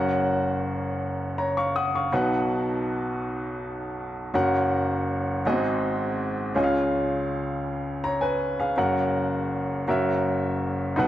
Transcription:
Already playing: F#1 F#2 C#4 F#4 A#4 F#5
1.38 C#5 A#5
1.57 F5 C#6
1.76 F#5 D#6
1.95 F5 C#6
2.12 B1 B2 D#4 F#4 B4 F#5
4.34 F#1 F#2 C#4 F#4 A#4 F#5
5.45 G#1 G#2 B3 F#4 G#4 D#5
5.52 C4
6.55 C#2 C#3 C#4 F4 G#4 D#5
6.64 F5
8.04 C#5 A#5
8.21 B4 G#5
8.60 G#4 F5
8.76 F#1 F#2 C#4 F#4 A#4 F#5
9.88 F#1 F#2 C#4 F#4 A#4 E5
10.96 B1 B2 D#4 F#4 B4 F#5

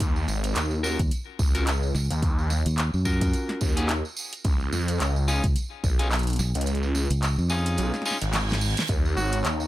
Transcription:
0.00 D#2, kick, closed hi-hat, tambourine
0.16 tambourine
0.28 G#1, snare, tambourine
0.44 closed hi-hat, tambourine
0.55 D#2, clap, closed hi-hat, tambourine
0.71 tambourine
0.83 C#4 F4 F#4 A#4, tambourine
0.99 D#2, kick, closed hi-hat, tambourine
1.11 closed hi-hat, tambourine
1.39 C#2, kick, tambourine
1.55 C#4 F4 F#4 A#4, closed hi-hat, tambourine
1.67 clap, closed hi-hat, tambourine
1.83 tambourine
1.95 C#2, snare, tambourine
2.10 D#2, closed hi-hat, tambourine
2.23 kick, closed hi-hat, tambourine
2.39 tambourine
2.50 snare, tambourine
2.66 D#2, closed hi-hat, tambourine
2.78 clap, closed hi-hat, tambourine
2.94 F#2, tambourine
3.05 C#4 F4 F#4 A#4, kick, tambourine
3.21 kick, closed hi-hat, tambourine
3.33 closed hi-hat, tambourine
3.49 snare
3.61 D#2, kick, tambourine
3.77 C#4 F4 F#4 G#4, closed hi-hat, tambourine
3.88 clap, closed hi-hat, tambourine
4.05 tambourine
4.17 tambourine
4.33 closed hi-hat, tambourine
4.44 C#2, kick, closed hi-hat, tambourine
4.60 tambourine
4.72 F2, snare, tambourine
4.88 closed hi-hat, tambourine
5.00 C#2, clap, closed hi-hat, tambourine
5.16 tambourine
5.28 C#4 D#4 F4 G#4, tambourine
5.43 C#2, kick, closed hi-hat, tambourine
5.56 closed hi-hat, tambourine
5.84 B1, kick, tambourine
5.99 C#4 D#4 F4 G#4, closed hi-hat, tambourine
6.11 clap, closed hi-hat, tambourine
6.15 closed hi-hat
6.19 closed hi-hat
6.23 closed hi-hat
6.27 closed hi-hat, tambourine
6.30 closed hi-hat
6.33 closed hi-hat
6.36 B1, snare, closed hi-hat, tambourine
6.54 C#2, closed hi-hat, tambourine
6.61 closed hi-hat
6.66 closed hi-hat, tambourine
6.75 closed hi-hat
6.83 tambourine
6.95 snare, tambourine
7.10 C#2, closed hi-hat, tambourine
7.23 clap, closed hi-hat, tambourine
7.38 F2, tambourine
7.50 C#4 D#4 F4 G#4, clap, tambourine
7.66 closed hi-hat, tambourine
7.77 B1, closed hi-hat, tambourine, reverse cymbal
7.94 snare, tambourine
8.02 F4 G#4, snare, tambourine
8.06 C#4 D#4
8.11 snare
8.21 G#1, closed hi-hat, tambourine
8.33 snare, clap, closed hi-hat, tambourine
8.49 snare, tambourine
8.61 tambourine
8.77 snare, closed hi-hat, tambourine
8.88 D#2 D#4 C#5 A#5, kick, closed hi-hat, tambourine
9.05 tambourine
9.17 G#1 F#4, snare, tambourine
9.32 closed hi-hat, tambourine
9.45 D#2, clap, closed hi-hat, tambourine
9.60 tambourine

